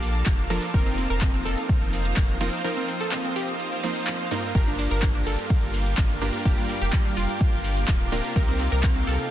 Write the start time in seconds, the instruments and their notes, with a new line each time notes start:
Already playing: analog synth bass A#1, supersaw synth A#2 A#3 D4 F4 A4 A#4, ambient pad A#3 F5 A5 D6, synth pluck G4
0.03 open hi-hat, shaker
0.15 closed hi-hat, shaker
0.26 analog synth bass F1, kick, clap, closed hi-hat, shaker
0.38 closed hi-hat, shaker
0.50 supersaw synth F3 A#3 D4 F4 A4 A#4, open hi-hat, shaker
0.62 closed hi-hat, shaker
0.74 analog synth bass F1, supersaw synth F3 A#3 C4 D#4 F4 A#4, synth pluck A#4, ambient pad C5 D#6, kick, closed hi-hat, shaker
0.86 synth pluck C4, closed hi-hat, shaker
0.98 synth pluck C4, open hi-hat, shaker
1.10 analog synth bass F1, synth pluck A#4, closed hi-hat, shaker
1.21 synth pluck C4, kick, clap, closed hi-hat, shaker
1.34 synth pluck C4, closed hi-hat
1.45 analog synth bass F1, synth pluck A4, open hi-hat, shaker
1.58 closed hi-hat, shaker
1.69 kick, closed hi-hat, shaker
1.82 analog synth bass F1, shaker
1.93 open hi-hat, shaker
2.05 closed hi-hat, shaker
2.16 analog synth bass F1, kick, clap, closed hi-hat, shaker
2.29 closed hi-hat, shaker
2.40 supersaw synth F3 A#3 C4 D#4 F4 A#4, open hi-hat, shaker
2.52 closed hi-hat, shaker
2.64 supersaw synth F3 A#3 C4 D#4 F4 A#4, synth pluck A#4, closed hi-hat, shaker
2.77 synth pluck C4, closed hi-hat, shaker
2.88 synth pluck C4, open hi-hat, shaker
3.01 synth pluck A4, closed hi-hat, shaker
3.12 synth pluck C4, clap, closed hi-hat, shaker
3.24 synth pluck C4, closed hi-hat, shaker
3.36 synth pluck G4, open hi-hat, shaker
3.48 closed hi-hat, shaker
3.60 closed hi-hat, shaker
3.72 closed hi-hat, shaker
3.83 supersaw synth F3 A#3 C4 D#4 F4 C5, open hi-hat, shaker
3.96 closed hi-hat, shaker
4.07 clap, closed hi-hat, shaker
4.20 closed hi-hat, shaker
4.31 supersaw synth G2 A#3 C4 D#4 F4 A#4, open hi-hat, shaker
4.43 closed hi-hat, shaker
4.55 analog synth bass G1, supersaw synth G2 A#3 D4 F4 G4 A#4, ambient pad A#3 G5 D6, synth texture F4 F5, synth pluck A#4, kick, closed hi-hat, ride, shaker
4.67 synth pluck D4, closed hi-hat, shaker
4.79 synth pluck D4, open hi-hat, ride, shaker
4.91 analog synth bass G1, synth pluck A#4, closed hi-hat, shaker
5.02 synth pluck D4, kick, clap, closed hi-hat, ride, shaker
5.15 synth pluck D4, closed hi-hat
5.26 analog synth bass G1, synth pluck A4, open hi-hat, ride, shaker
5.39 closed hi-hat, shaker
5.50 kick, closed hi-hat, ride, shaker
5.62 analog synth bass G1, shaker
5.74 open hi-hat, ride, shaker
5.86 closed hi-hat, shaker
5.97 analog synth bass G1, kick, clap, closed hi-hat, ride, shaker
6.10 closed hi-hat, shaker
6.22 supersaw synth G2 A#3 D4 F4 G4 A#4, open hi-hat, ride, shaker
6.34 closed hi-hat, shaker
6.45 analog synth bass F1, supersaw synth G2 A#3 D4 F4 G4 A#4, synth pluck G4, kick, closed hi-hat, ride, shaker
6.58 synth pluck G3, closed hi-hat, shaker
6.69 synth pluck G3, open hi-hat, ride, shaker
6.81 analog synth bass F1, synth pluck G4, closed hi-hat, shaker
6.93 synth pluck G3, kick, clap, closed hi-hat, ride, shaker
7.05 synth pluck G3, closed hi-hat
7.16 analog synth bass F1, synth pluck F4, open hi-hat, ride, shaker
7.29 closed hi-hat, shaker
7.40 kick, closed hi-hat, ride, shaker
7.52 analog synth bass G1, shaker
7.64 open hi-hat, ride, shaker
7.77 closed hi-hat, shaker
7.88 analog synth bass D1, kick, clap, closed hi-hat, ride, shaker
8.01 closed hi-hat, shaker
8.12 supersaw synth C3 A#3 D4 F4 G4 A#4, open hi-hat, ride, shaker
8.24 closed hi-hat, shaker
8.36 analog synth bass C2, supersaw synth C3 A#3 C4 D#4 G4 A#4, synth pluck A#4, ambient pad D#5 C6, kick, closed hi-hat, ride, shaker
8.48 synth pluck C4, closed hi-hat, shaker
8.59 synth pluck C4, open hi-hat, ride, shaker
8.72 analog synth bass C2, synth pluck A#4, closed hi-hat, shaker
8.83 synth pluck C4, kick, clap, closed hi-hat, ride, shaker
8.96 synth pluck C4, closed hi-hat
9.07 analog synth bass C2, synth pluck A4, open hi-hat, ride, shaker
9.19 closed hi-hat, shaker